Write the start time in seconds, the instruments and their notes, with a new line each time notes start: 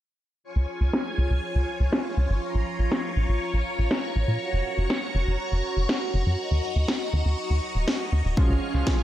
0.44 string machine F4 C#5 G#5 C#6
0.56 analog synth bass C#2
0.81 analog synth bass C#2
0.93 snare
1.18 analog synth bass C#2
1.31 analog synth bass C#2
1.55 analog synth bass C#2
1.80 analog synth bass C#2
1.93 snare
2.17 analog synth bass C#2
2.30 analog synth bass G#1
2.42 string machine A#5
2.55 analog synth bass A#1
2.79 analog synth bass A#1
2.92 snare
3.16 analog synth bass A#1
3.29 analog synth bass A#1
3.54 analog synth bass A#1
3.79 analog synth bass A#1
3.91 snare
4.16 analog synth bass A#1
4.28 analog synth bass A#2
4.40 string machine F#4
4.53 analog synth bass F#1
4.78 analog synth bass F#1
4.90 snare
5.15 analog synth bass F#1
5.27 analog synth bass F#1
5.52 analog synth bass F#1
5.77 analog synth bass F#1
5.89 snare
6.14 analog synth bass F#1
6.27 analog synth bass F#2
6.39 string machine D#5
6.51 analog synth bass D#2
6.76 analog synth bass D#2
6.88 snare
7.13 analog synth bass D#2
7.26 analog synth bass D#2
7.50 analog synth bass D#2
7.75 analog synth bass D#1
7.88 snare
8.12 analog synth bass D#2
8.25 analog synth bass D#1
8.37 electric grand piano F3 G#3 C#4 F4, analog polysynth C#4, string machine F4 F5 G#5, kick
8.49 analog synth bass C#2
8.62 analog polysynth C#4
8.74 analog synth bass C#2, electric grand piano F3 G#3 C#4 F4
8.87 kick, snare
8.99 analog polysynth C4